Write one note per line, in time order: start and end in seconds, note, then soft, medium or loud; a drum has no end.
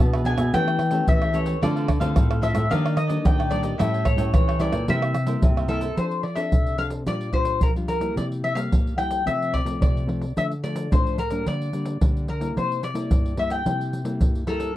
0.00 0.51 B2 medium
0.00 0.21 B3 medium
0.00 0.21 D4 medium
0.00 0.11 G#4 medium
0.00 0.11 B4 medium
0.00 0.10 E5 medium
0.00 0.26 A5 loud
0.14 0.25 G#4 soft
0.14 0.25 B4 soft
0.14 0.25 E5 medium
0.14 pandeiro soft
0.14 tamborim medium
0.14 shaker soft
0.25 0.42 B3 medium
0.25 0.38 D4 medium
0.25 0.42 D4 medium
0.25 0.38 G#4 medium
0.25 0.42 G#4 medium
0.25 0.39 B4 medium
0.25 0.38 E5 medium
0.25 0.51 G#5 loud
0.25 pandeiro medium
0.25 shaker medium
0.38 0.50 B2 medium
0.38 0.53 G#4 soft
0.38 0.52 B4 soft
0.38 0.52 E5 soft
0.38 pandeiro medium
0.38 tamborim medium
0.38 shaker medium
0.53 1.05 E3 medium
0.53 0.79 A3 medium
0.53 0.79 C#4 medium
0.53 0.79 G4 medium
0.53 0.66 G4 medium
0.53 0.66 A4 medium
0.53 0.67 C#5 medium
0.53 1.08 G5 loud
0.53 0.67 G5 medium
0.53 pandeiro medium
0.53 shaker medium
0.53 surdo medium
0.68 0.79 A4 soft
0.68 0.79 C#5 soft
0.68 0.79 G5 soft
0.68 pandeiro soft
0.68 tamborim medium
0.68 shaker soft
0.79 muted cavaquinho stroke soft
0.79 pandeiro medium
0.79 tamborim medium
0.91 1.29 A3 medium
0.91 1.29 C#4 medium
0.91 1.29 G4 medium
0.91 1.20 A4 medium
0.91 1.19 C#5 medium
0.91 1.19 G5 medium
0.91 pandeiro medium
0.91 shaker medium
1.08 1.59 E3 medium
1.08 1.36 E5 medium
1.08 pandeiro medium
1.08 shaker medium
1.08 surdo loud
1.22 1.32 A4 soft
1.22 1.33 C#5 soft
1.22 1.34 G5 medium
1.22 pandeiro soft
1.22 tamborim medium
1.22 shaker soft
1.33 1.57 A3 medium
1.33 1.57 C#4 medium
1.33 1.46 G4 medium
1.33 1.57 G4 medium
1.33 1.46 A4 medium
1.33 1.45 C#5 medium
1.33 1.60 C#5 medium
1.33 1.44 G5 medium
1.33 pandeiro medium
1.33 shaker medium
1.45 1.60 A4 soft
1.45 1.60 C#5 soft
1.45 1.59 G5 medium
1.45 pandeiro medium
1.45 shaker medium
1.62 2.14 D3 medium
1.62 1.87 A3 medium
1.62 1.88 C4 medium
1.62 1.74 D4 medium
1.62 1.88 F4 medium
1.62 1.75 A4 medium
1.62 1.75 C5 medium
1.62 2.04 D5 medium
1.62 1.75 F5 medium
1.62 pandeiro medium
1.62 tamborim medium
1.62 shaker medium
1.62 surdo medium
1.76 1.87 A4 soft
1.76 1.87 C5 soft
1.76 1.88 F5 medium
1.76 pandeiro soft
1.76 shaker soft
1.88 muted cavaquinho stroke soft
1.88 pandeiro medium
1.88 tamborim medium
1.88 shaker medium
1.88 surdo medium
2.00 2.14 D3 medium
2.00 2.38 A3 medium
2.00 2.38 C4 medium
2.00 2.39 F4 medium
2.00 2.28 A4 medium
2.00 2.28 C5 medium
2.00 2.28 F5 medium
2.00 2.40 F5 medium
2.00 pandeiro medium
2.00 shaker medium
2.15 2.67 A2 medium
2.15 pandeiro medium
2.15 tamborim medium
2.15 shaker medium
2.15 surdo loud
2.30 2.41 A4 soft
2.30 2.42 C5 soft
2.30 2.42 F5 medium
2.30 pandeiro soft
2.30 tamborim medium
2.30 shaker soft
2.41 2.66 A3 medium
2.41 2.66 C4 medium
2.41 2.55 D4 medium
2.41 2.66 F4 medium
2.41 2.55 A4 medium
2.41 2.54 C5 medium
2.41 2.69 E5 medium
2.41 2.53 F5 medium
2.41 pandeiro medium
2.41 shaker medium
2.54 2.68 A2 medium
2.54 2.69 A4 soft
2.54 2.68 C5 soft
2.54 2.68 F5 soft
2.54 pandeiro medium
2.54 tamborim medium
2.54 shaker medium
2.70 3.22 D#3 medium
2.70 2.96 G3 medium
2.70 2.96 A#3 medium
2.70 2.83 D4 medium
2.70 2.97 D4 medium
2.70 2.83 G4 medium
2.70 2.83 D5 medium
2.70 2.83 D#5 medium
2.70 2.96 F5 loud
2.70 pandeiro medium
2.70 shaker medium
2.70 surdo medium
2.85 2.95 G4 soft
2.85 2.96 D5 soft
2.85 2.95 D#5 soft
2.85 pandeiro soft
2.85 tamborim medium
2.85 shaker soft
2.96 3.26 D#5 medium
2.96 muted cavaquinho stroke soft
2.96 pandeiro medium
2.96 tamborim medium
2.96 shaker medium
3.07 3.47 G3 medium
3.07 3.47 A#3 medium
3.07 3.47 D4 medium
3.07 3.37 G4 medium
3.07 3.36 D5 medium
3.07 3.36 D#5 medium
3.07 pandeiro medium
3.07 shaker medium
3.25 3.77 A#2 medium
3.25 3.71 D#3 medium
3.25 3.51 G5 medium
3.25 pandeiro medium
3.25 shaker medium
3.25 surdo loud
3.38 3.49 G4 soft
3.38 3.50 D5 medium
3.38 3.50 D#5 soft
3.38 pandeiro soft
3.38 tamborim medium
3.38 shaker soft
3.50 3.74 G3 medium
3.50 3.75 A#3 medium
3.50 3.64 D4 medium
3.50 3.75 D4 medium
3.50 3.63 G4 medium
3.50 3.80 D5 medium
3.50 3.62 D5 medium
3.50 3.63 D#5 medium
3.50 pandeiro medium
3.50 shaker medium
3.63 3.78 G4 soft
3.63 3.77 D5 soft
3.63 3.77 D#5 medium
3.63 pandeiro medium
3.63 shaker medium
3.78 4.31 A2 medium
3.78 4.05 G3 medium
3.78 4.05 C#4 medium
3.78 3.91 E4 medium
3.78 4.06 E4 medium
3.78 3.92 A4 medium
3.78 3.92 C#5 medium
3.78 4.05 E5 medium
3.78 3.92 G5 medium
3.78 pandeiro medium
3.78 tamborim medium
3.78 shaker medium
3.78 surdo medium
3.93 4.04 A4 soft
3.93 4.05 C#5 soft
3.93 4.05 G5 medium
3.93 pandeiro soft
3.93 shaker soft
4.05 4.31 C#5 medium
4.05 muted cavaquinho stroke soft
4.05 pandeiro medium
4.05 tamborim medium
4.05 shaker medium
4.05 surdo medium
4.17 4.31 A2 medium
4.17 4.55 G3 medium
4.17 4.56 C#4 medium
4.17 4.56 E4 medium
4.17 4.46 A4 medium
4.17 4.46 C#5 medium
4.17 4.45 G5 medium
4.17 pandeiro medium
4.17 shaker medium
4.34 4.86 E3 medium
4.34 4.60 C#5 medium
4.34 pandeiro medium
4.34 tamborim medium
4.34 shaker medium
4.34 surdo loud
4.48 4.59 A4 soft
4.48 4.59 C#5 medium
4.48 4.60 G5 soft
4.48 pandeiro soft
4.48 tamborim medium
4.48 shaker soft
4.59 4.77 G3 medium
4.59 4.77 C#4 medium
4.59 4.73 E4 medium
4.59 4.77 E4 medium
4.59 4.73 A4 medium
4.59 4.72 C#5 medium
4.59 4.89 D5 medium
4.59 4.71 G5 medium
4.59 pandeiro medium
4.59 shaker medium
4.72 4.85 A#2 medium
4.72 4.87 A4 soft
4.72 4.87 C#5 soft
4.72 4.86 G5 soft
4.72 pandeiro medium
4.72 tamborim medium
4.72 shaker medium
4.88 5.40 C3 medium
4.88 5.14 G3 medium
4.88 5.14 A#3 medium
4.88 5.01 E4 medium
4.88 5.14 E4 medium
4.88 5.01 A#4 medium
4.88 5.02 C5 medium
4.88 5.40 E5 medium
4.88 5.02 E5 medium
4.88 pandeiro medium
4.88 shaker medium
4.88 surdo medium
5.02 5.14 A#4 soft
5.02 5.14 C5 soft
5.02 5.14 E5 soft
5.02 pandeiro soft
5.02 tamborim medium
5.02 shaker soft
5.14 muted cavaquinho stroke soft
5.14 pandeiro medium
5.14 tamborim medium
5.14 shaker medium
5.26 5.65 G3 medium
5.26 5.65 A#3 medium
5.26 5.65 E4 medium
5.26 5.55 A#4 medium
5.26 5.55 C5 medium
5.26 5.54 E5 medium
5.26 pandeiro medium
5.26 shaker medium
5.42 5.95 G2 medium
5.42 5.90 C3 loud
5.42 pandeiro medium
5.42 shaker medium
5.42 surdo loud
5.57 5.69 A#4 soft
5.57 5.69 C5 soft
5.57 5.70 E5 soft
5.57 pandeiro soft
5.57 tamborim medium
5.57 shaker soft
5.68 5.86 G3 medium
5.68 5.86 A#3 medium
5.68 5.82 E4 medium
5.68 5.86 E4 medium
5.68 5.95 A4 medium
5.68 5.82 A#4 medium
5.68 5.81 C5 medium
5.68 5.80 E5 medium
5.68 pandeiro medium
5.81 5.96 A#4 soft
5.81 5.96 C5 soft
5.81 5.95 E5 medium
5.81 pandeiro medium
5.81 shaker medium
5.97 6.50 F3 medium
5.97 6.23 C4 soft
5.97 6.24 D4 soft
5.97 6.24 A4 medium
5.97 6.23 C5 medium
5.97 pandeiro medium
5.97 shaker medium
5.97 surdo soft
6.11 pandeiro soft
6.11 shaker soft
6.23 6.37 D5 medium
6.23 pandeiro medium
6.35 6.74 C4 soft
6.35 6.75 D4 medium
6.35 6.75 A4 medium
6.35 6.75 E5 medium
6.35 pandeiro medium
6.35 shaker medium
6.52 7.05 C3 medium
6.52 pandeiro medium
6.52 shaker medium
6.52 surdo medium
6.67 pandeiro soft
6.67 shaker soft
6.78 7.02 C4 medium
6.78 7.02 D4 soft
6.78 7.03 A4 medium
6.78 6.86 F5 medium
6.78 pandeiro medium
6.90 pandeiro medium
6.90 shaker medium
7.06 7.59 A#2 medium
7.06 7.30 G3 medium
7.06 7.30 D4 medium
7.06 7.30 F4 medium
7.06 7.33 D5 medium
7.06 pandeiro medium
7.06 shaker medium
7.06 surdo soft
7.21 pandeiro soft
7.21 shaker soft
7.33 7.71 G3 soft
7.33 7.71 D4 soft
7.33 7.71 F4 medium
7.33 7.62 C5 medium
7.33 pandeiro medium
7.33 surdo medium
7.45 pandeiro medium
7.45 shaker medium
7.61 8.14 F3 medium
7.61 7.70 A#4 medium
7.61 pandeiro medium
7.61 shaker medium
7.61 surdo medium
7.76 7.99 G3 medium
7.76 7.99 D4 medium
7.76 8.00 F4 medium
7.76 pandeiro soft
7.76 shaker soft
7.88 8.17 A#4 medium
7.88 pandeiro medium
7.88 shaker medium
8.00 8.52 G3 soft
8.00 8.53 A#3 medium
8.00 8.53 E4 medium
8.00 pandeiro medium
8.00 shaker medium
8.16 8.69 C3 medium
8.16 8.25 D5 medium
8.16 pandeiro medium
8.16 shaker medium
8.16 surdo medium
8.32 pandeiro soft
8.32 shaker soft
8.44 8.55 E5 medium
8.44 pandeiro medium
8.55 8.93 G3 medium
8.55 8.94 A#3 medium
8.55 8.98 F5 medium
8.55 pandeiro medium
8.55 shaker medium
8.71 9.24 G2 medium
8.71 pandeiro medium
8.71 shaker medium
8.71 surdo medium
8.87 pandeiro soft
8.87 shaker soft
8.97 9.21 G3 medium
8.97 9.22 A#3 medium
8.97 9.22 E4 medium
8.97 9.24 G5 medium
8.97 pandeiro medium
9.11 pandeiro medium
9.11 shaker medium
9.25 9.78 C3 medium
9.25 9.63 F3 medium
9.25 9.63 A3 medium
9.25 9.63 C4 medium
9.25 9.52 E5 medium
9.25 pandeiro medium
9.25 shaker medium
9.25 surdo medium
9.42 pandeiro soft
9.42 shaker soft
9.54 9.80 D5 medium
9.54 pandeiro soft
9.54 surdo medium
9.65 10.03 F3 medium
9.65 10.04 A3 medium
9.65 10.04 C4 medium
9.65 pandeiro medium
9.65 shaker medium
9.81 10.34 C3 medium
9.81 10.33 D5 medium
9.81 pandeiro medium
9.81 shaker medium
9.81 surdo medium
9.97 pandeiro soft
9.97 shaker soft
10.07 10.24 F3 medium
10.07 10.25 A3 medium
10.07 10.25 C4 medium
10.07 pandeiro medium
10.22 pandeiro medium
10.22 shaker medium
10.37 10.89 D3 medium
10.37 10.53 F3 medium
10.37 10.53 A3 medium
10.37 10.53 D4 medium
10.37 10.45 E5 medium
10.37 pandeiro medium
10.37 shaker medium
10.37 surdo medium
10.51 pandeiro soft
10.51 shaker soft
10.63 10.87 F3 soft
10.63 10.87 A3 medium
10.63 10.87 D4 soft
10.63 10.90 D5 medium
10.63 pandeiro medium
10.63 shaker medium
10.76 pandeiro medium
10.76 shaker medium
10.91 11.44 A2 medium
10.91 11.18 F3 medium
10.91 11.18 A3 soft
10.91 11.18 D4 medium
10.91 11.18 C5 medium
10.91 pandeiro medium
10.91 shaker medium
10.91 surdo medium
11.07 pandeiro soft
11.07 shaker soft
11.18 11.45 A#4 medium
11.18 pandeiro medium
11.18 shaker medium
11.31 11.69 G3 medium
11.31 11.69 A#3 medium
11.31 11.69 D4 medium
11.31 pandeiro medium
11.31 shaker medium
11.46 11.99 D3 medium
11.46 12.29 D5 medium
11.46 pandeiro medium
11.46 shaker medium
11.46 surdo medium
11.62 pandeiro soft
11.62 shaker soft
11.73 11.97 G3 medium
11.73 11.97 A#3 soft
11.73 11.97 D4 medium
11.73 pandeiro soft
11.73 shaker medium
11.86 pandeiro medium
11.86 shaker medium
12.01 12.54 D3 medium
12.01 12.27 G3 medium
12.01 12.28 A#3 medium
12.01 12.28 D4 medium
12.01 pandeiro medium
12.01 shaker medium
12.01 surdo medium
12.17 pandeiro soft
12.17 shaker soft
12.28 12.57 A#4 medium
12.28 pandeiro medium
12.40 12.78 G3 medium
12.40 12.78 A#3 medium
12.40 12.79 E4 medium
12.40 pandeiro medium
12.40 shaker medium
12.56 13.09 C3 medium
12.56 12.83 C5 medium
12.56 pandeiro medium
12.56 shaker medium
12.56 surdo medium
12.72 pandeiro soft
12.72 shaker soft
12.83 13.41 D5 medium
12.83 pandeiro medium
12.83 shaker medium
12.94 13.33 G3 medium
12.94 13.33 A#3 medium
12.94 13.33 E4 medium
12.94 pandeiro medium
12.94 shaker medium
13.11 13.64 G2 medium
13.11 pandeiro medium
13.11 shaker medium
13.11 surdo medium
13.25 pandeiro soft
13.25 shaker soft
13.37 13.61 G3 medium
13.37 13.62 A#3 medium
13.37 13.62 E4 medium
13.37 13.51 E5 medium
13.37 pandeiro medium
13.50 14.44 G5 medium
13.50 pandeiro medium
13.50 shaker medium
13.65 14.18 C3 medium
13.65 14.03 G3 medium
13.65 14.03 A#3 medium
13.65 14.03 E4 medium
13.65 pandeiro medium
13.65 shaker medium
13.65 surdo medium
13.81 pandeiro soft
13.81 shaker soft
13.93 pandeiro soft
13.93 shaker medium
14.04 14.43 G3 medium
14.04 14.43 A#3 medium
14.04 14.43 E4 medium
14.04 pandeiro medium
14.04 shaker medium
14.21 14.73 G2 medium
14.21 pandeiro medium
14.21 shaker medium
14.21 surdo medium
14.35 pandeiro soft
14.35 shaker soft
14.47 14.71 G3 medium
14.47 14.71 A#3 medium
14.47 14.71 E4 medium
14.47 14.75 A4 medium
14.47 14.75 A#4 medium
14.47 pandeiro medium
14.60 pandeiro medium
14.60 shaker medium